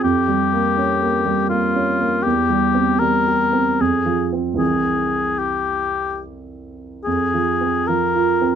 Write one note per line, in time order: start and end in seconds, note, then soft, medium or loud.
0.04 2.22 F2 soft
0.04 1.48 G4 medium
0.28 0.67 G3 soft
0.53 0.92 A#3 soft
0.78 1.16 C#4 soft
1.02 1.41 A#3 soft
1.25 1.65 G3 soft
1.49 1.91 A#3 soft
1.49 2.24 F4 soft
1.76 2.15 C#4 soft
1.99 2.25 A#3 soft
2.22 3.76 E2 soft
2.22 3.01 G4 medium
2.49 2.90 G3 soft
2.74 3.16 C4 soft
2.99 3.43 G3 soft
2.99 3.82 A#4 medium
3.28 3.70 G4 soft
3.53 3.80 C4 soft
3.80 4.58 F2 soft
3.80 4.32 G#4 soft
4.05 4.48 F3 soft
4.33 4.54 C4 soft
4.54 6.99 C2 soft
4.54 7.00 E3 soft
4.54 7.01 C4 soft
4.58 5.41 G#4 soft
5.39 6.22 G4 soft
7.04 8.55 F2 soft
7.04 7.88 G#4 soft
7.34 7.77 F3 soft
7.61 8.04 C4 soft
7.87 8.31 F3 soft
7.87 8.55 A#4 soft
8.15 8.55 F4 soft
8.41 8.55 C4 soft